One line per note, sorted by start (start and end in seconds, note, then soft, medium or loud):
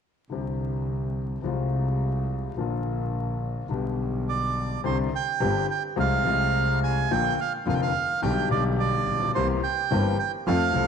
0.30 1.39 C2 medium
0.30 1.39 C2 soft
0.30 1.39 C3 soft
0.30 1.38 D3 soft
0.30 1.39 G3 soft
0.30 1.40 C4 soft
0.30 1.40 G4 soft
1.44 2.51 C2 medium
1.44 2.51 C3 medium
1.44 2.51 F3 soft
1.44 2.51 G#3 soft
1.44 2.52 F4 soft
2.57 3.64 A#1 medium
2.57 3.65 A#1 medium
2.57 3.65 A#2 medium
2.57 3.64 D3 soft
2.57 3.64 F3 soft
2.57 3.65 A#3 soft
2.57 3.66 F4 medium
3.69 4.78 B1 medium
3.69 4.79 B2 medium
3.69 4.78 D3 soft
3.69 4.78 G3 soft
3.69 4.79 B3 soft
3.69 4.79 G4 soft
4.29 4.81 D5 medium
4.84 5.08 C2 medium
4.84 5.08 C3 medium
4.84 5.08 D3 medium
4.84 5.08 G3 medium
4.84 5.08 C4 medium
4.84 5.08 G4 medium
4.84 4.98 C5 medium
5.15 5.67 G5 medium
5.40 5.64 G1 medium
5.40 5.65 G1 medium
5.40 5.64 G2 medium
5.40 5.64 D3 medium
5.40 5.64 G3 medium
5.40 5.65 C4 medium
5.40 5.64 G4 medium
5.71 5.83 G5 medium
5.96 6.21 C2 medium
5.96 6.22 C2 medium
5.96 6.21 C3 medium
5.96 6.21 F3 medium
5.96 6.21 G#3 medium
5.96 6.21 F4 medium
5.96 6.80 F5 medium
6.24 7.06 C2 medium
6.24 7.07 C2 medium
6.24 7.06 C3 medium
6.24 7.06 F3 medium
6.24 7.06 G#3 medium
6.24 7.07 F4 medium
6.84 7.12 G#5 medium
7.11 7.34 A#1 medium
7.11 7.34 A#2 medium
7.11 7.34 D3 medium
7.11 7.34 F3 medium
7.11 7.35 A#3 medium
7.11 7.34 F4 medium
7.11 7.40 G5 medium
7.41 7.53 F5 medium
7.66 7.90 F1 medium
7.66 7.91 F1 medium
7.66 7.90 F2 medium
7.66 7.90 D3 medium
7.66 7.90 F3 medium
7.66 7.91 A#3 medium
7.66 7.90 F4 medium
7.66 7.75 F5 medium
7.74 7.81 G5 medium
7.82 8.21 F5 medium
8.22 8.46 B1 medium
8.22 8.47 B1 medium
8.22 8.46 B2 medium
8.22 8.46 D3 medium
8.22 8.46 G3 medium
8.22 8.46 B3 medium
8.22 8.46 G4 medium
8.22 8.49 G5 medium
8.48 9.26 B1 medium
8.48 9.06 B1 medium
8.48 9.31 B2 medium
8.48 9.30 D3 medium
8.48 9.30 G3 medium
8.48 9.31 B3 medium
8.48 9.32 G4 medium
8.48 8.64 D5 medium
8.79 9.31 D5 medium
9.07 9.34 A#1 medium
9.14 9.21 A1 soft
9.21 9.28 A#1 medium
9.28 9.35 B1 medium
9.34 9.58 C2 medium
9.34 9.59 C2 medium
9.34 9.59 C3 medium
9.34 9.59 E3 medium
9.34 9.59 A#3 medium
9.34 9.59 C4 medium
9.34 9.59 G4 medium
9.34 9.47 C5 medium
9.63 10.18 G5 medium
9.91 10.15 G1 medium
9.91 10.15 G2 medium
9.91 10.15 E3 medium
9.91 10.15 A#3 medium
9.91 10.15 C4 medium
9.91 10.15 G4 medium
10.19 10.32 G5 medium
10.47 10.71 F2 medium
10.47 10.71 F3 medium
10.47 10.71 A3 medium
10.47 10.71 C4 medium
10.47 10.71 A4 medium
10.47 10.87 F5 medium
10.73 10.87 C2 medium
10.73 10.87 C3 medium
10.73 10.87 F3 medium
10.73 10.87 A3 medium
10.73 10.87 C4 medium
10.73 10.87 A4 medium